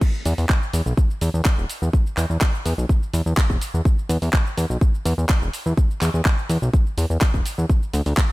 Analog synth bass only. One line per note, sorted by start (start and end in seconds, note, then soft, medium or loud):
0.26 0.34 E2 loud
0.38 0.46 E2 medium
0.73 0.82 E2 medium
0.86 0.94 B1 medium
1.21 1.30 E2 loud
1.34 1.42 E2 medium
1.58 1.66 E1 medium
1.82 1.89 E2 medium
2.17 2.26 E2 loud
2.30 2.37 E2 medium
2.65 2.74 E2 medium
2.78 2.86 B1 medium
3.14 3.22 E2 medium
3.26 3.34 E2 medium
3.50 3.57 E1 medium
3.74 3.82 E2 medium
4.09 4.18 E2 medium
4.22 4.30 E2 medium
4.57 4.66 E2 loud
4.70 4.78 B1 medium
5.05 5.14 E2 medium
5.18 5.25 E2 medium
5.42 5.50 E1 medium
5.66 5.73 E2 medium
6.02 6.10 E2 loud
6.14 6.22 E2 medium
6.49 6.58 E2 medium
6.62 6.70 B1 medium
6.98 7.06 E2 medium
7.10 7.18 E2 medium
7.34 7.42 E1 medium
7.58 7.66 E2 medium
7.93 8.02 D2 medium
8.06 8.14 D2 medium